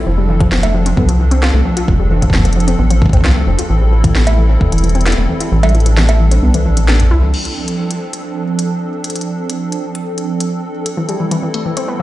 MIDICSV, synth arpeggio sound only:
0, 0, Header, 1, 2, 480
1, 0, Start_track
1, 0, Key_signature, -1, "major"
1, 0, Tempo, 454545
1, 68, Time_signature, 4, 2, 24, 8
1, 12695, End_track
2, 0, Start_track
2, 0, Title_t, "Synth arpeggio sound"
2, 0, Program_c, 0, 84
2, 67, Note_on_c, 0, 53, 80
2, 125, Note_off_c, 0, 53, 0
2, 187, Note_on_c, 0, 55, 72
2, 245, Note_off_c, 0, 55, 0
2, 307, Note_on_c, 0, 52, 74
2, 404, Note_off_c, 0, 52, 0
2, 427, Note_on_c, 0, 53, 101
2, 485, Note_off_c, 0, 53, 0
2, 547, Note_on_c, 0, 53, 86
2, 661, Note_off_c, 0, 53, 0
2, 667, Note_on_c, 0, 57, 73
2, 764, Note_off_c, 0, 57, 0
2, 786, Note_on_c, 0, 53, 77
2, 883, Note_off_c, 0, 53, 0
2, 907, Note_on_c, 0, 60, 80
2, 1004, Note_off_c, 0, 60, 0
2, 1026, Note_on_c, 0, 59, 84
2, 1123, Note_off_c, 0, 59, 0
2, 1146, Note_on_c, 0, 53, 101
2, 1261, Note_off_c, 0, 53, 0
2, 1266, Note_on_c, 0, 52, 76
2, 1364, Note_off_c, 0, 52, 0
2, 1386, Note_on_c, 0, 60, 100
2, 1483, Note_off_c, 0, 60, 0
2, 1506, Note_on_c, 0, 65, 99
2, 1604, Note_off_c, 0, 65, 0
2, 1626, Note_on_c, 0, 57, 75
2, 1724, Note_off_c, 0, 57, 0
2, 1746, Note_on_c, 0, 53, 74
2, 1843, Note_off_c, 0, 53, 0
2, 1866, Note_on_c, 0, 65, 74
2, 1963, Note_off_c, 0, 65, 0
2, 1986, Note_on_c, 0, 53, 81
2, 2045, Note_off_c, 0, 53, 0
2, 2107, Note_on_c, 0, 55, 74
2, 2165, Note_off_c, 0, 55, 0
2, 2226, Note_on_c, 0, 52, 79
2, 2324, Note_off_c, 0, 52, 0
2, 2346, Note_on_c, 0, 53, 101
2, 2405, Note_off_c, 0, 53, 0
2, 2466, Note_on_c, 0, 53, 84
2, 2581, Note_off_c, 0, 53, 0
2, 2586, Note_on_c, 0, 57, 77
2, 2684, Note_off_c, 0, 57, 0
2, 2706, Note_on_c, 0, 53, 78
2, 2804, Note_off_c, 0, 53, 0
2, 2826, Note_on_c, 0, 60, 84
2, 2923, Note_off_c, 0, 60, 0
2, 2946, Note_on_c, 0, 59, 80
2, 3044, Note_off_c, 0, 59, 0
2, 3066, Note_on_c, 0, 53, 101
2, 3181, Note_off_c, 0, 53, 0
2, 3186, Note_on_c, 0, 52, 75
2, 3283, Note_off_c, 0, 52, 0
2, 3306, Note_on_c, 0, 60, 106
2, 3403, Note_off_c, 0, 60, 0
2, 3426, Note_on_c, 0, 65, 101
2, 3523, Note_off_c, 0, 65, 0
2, 3546, Note_on_c, 0, 57, 74
2, 3643, Note_off_c, 0, 57, 0
2, 3666, Note_on_c, 0, 53, 77
2, 3763, Note_off_c, 0, 53, 0
2, 3786, Note_on_c, 0, 65, 72
2, 3883, Note_off_c, 0, 65, 0
2, 3906, Note_on_c, 0, 52, 80
2, 3965, Note_off_c, 0, 52, 0
2, 4026, Note_on_c, 0, 55, 75
2, 4085, Note_off_c, 0, 55, 0
2, 4146, Note_on_c, 0, 52, 78
2, 4243, Note_off_c, 0, 52, 0
2, 4266, Note_on_c, 0, 52, 105
2, 4325, Note_off_c, 0, 52, 0
2, 4386, Note_on_c, 0, 52, 87
2, 4501, Note_off_c, 0, 52, 0
2, 4506, Note_on_c, 0, 57, 75
2, 4603, Note_off_c, 0, 57, 0
2, 4626, Note_on_c, 0, 52, 78
2, 4723, Note_off_c, 0, 52, 0
2, 4747, Note_on_c, 0, 60, 81
2, 4844, Note_off_c, 0, 60, 0
2, 4866, Note_on_c, 0, 59, 82
2, 4963, Note_off_c, 0, 59, 0
2, 4986, Note_on_c, 0, 52, 100
2, 5094, Note_off_c, 0, 52, 0
2, 5107, Note_on_c, 0, 52, 81
2, 5204, Note_off_c, 0, 52, 0
2, 5227, Note_on_c, 0, 60, 101
2, 5324, Note_off_c, 0, 60, 0
2, 5347, Note_on_c, 0, 64, 102
2, 5444, Note_off_c, 0, 64, 0
2, 5468, Note_on_c, 0, 57, 74
2, 5564, Note_off_c, 0, 57, 0
2, 5588, Note_on_c, 0, 52, 78
2, 5684, Note_off_c, 0, 52, 0
2, 5708, Note_on_c, 0, 64, 73
2, 5804, Note_off_c, 0, 64, 0
2, 5828, Note_on_c, 0, 52, 79
2, 5886, Note_off_c, 0, 52, 0
2, 5948, Note_on_c, 0, 55, 77
2, 6006, Note_off_c, 0, 55, 0
2, 6068, Note_on_c, 0, 52, 78
2, 6164, Note_off_c, 0, 52, 0
2, 6188, Note_on_c, 0, 52, 102
2, 6246, Note_off_c, 0, 52, 0
2, 6308, Note_on_c, 0, 52, 88
2, 6422, Note_off_c, 0, 52, 0
2, 6428, Note_on_c, 0, 57, 75
2, 6524, Note_off_c, 0, 57, 0
2, 6548, Note_on_c, 0, 52, 80
2, 6644, Note_off_c, 0, 52, 0
2, 6667, Note_on_c, 0, 60, 85
2, 6764, Note_off_c, 0, 60, 0
2, 6788, Note_on_c, 0, 59, 82
2, 6884, Note_off_c, 0, 59, 0
2, 6907, Note_on_c, 0, 52, 101
2, 7016, Note_off_c, 0, 52, 0
2, 7028, Note_on_c, 0, 52, 79
2, 7125, Note_off_c, 0, 52, 0
2, 7148, Note_on_c, 0, 52, 77
2, 7244, Note_off_c, 0, 52, 0
2, 7268, Note_on_c, 0, 57, 79
2, 7382, Note_off_c, 0, 57, 0
2, 7388, Note_on_c, 0, 40, 97
2, 7446, Note_off_c, 0, 40, 0
2, 7508, Note_on_c, 0, 64, 100
2, 7622, Note_off_c, 0, 64, 0
2, 7628, Note_on_c, 0, 52, 73
2, 7724, Note_off_c, 0, 52, 0
2, 11587, Note_on_c, 0, 52, 82
2, 11645, Note_off_c, 0, 52, 0
2, 11707, Note_on_c, 0, 55, 76
2, 11765, Note_off_c, 0, 55, 0
2, 11827, Note_on_c, 0, 52, 75
2, 11924, Note_off_c, 0, 52, 0
2, 11947, Note_on_c, 0, 52, 104
2, 12005, Note_off_c, 0, 52, 0
2, 12067, Note_on_c, 0, 52, 84
2, 12181, Note_off_c, 0, 52, 0
2, 12187, Note_on_c, 0, 57, 75
2, 12284, Note_off_c, 0, 57, 0
2, 12307, Note_on_c, 0, 52, 75
2, 12404, Note_off_c, 0, 52, 0
2, 12427, Note_on_c, 0, 60, 82
2, 12524, Note_off_c, 0, 60, 0
2, 12547, Note_on_c, 0, 59, 82
2, 12644, Note_off_c, 0, 59, 0
2, 12695, End_track
0, 0, End_of_file